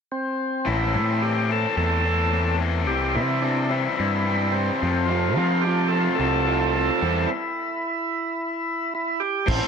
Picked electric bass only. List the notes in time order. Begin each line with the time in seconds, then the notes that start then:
0.67 A1
0.95 A2
1.77 E2
2.88 C2
3.16 C3
4.00 G2
4.83 F2
5.37 F3
6.20 C2
7.03 E2
9.48 A1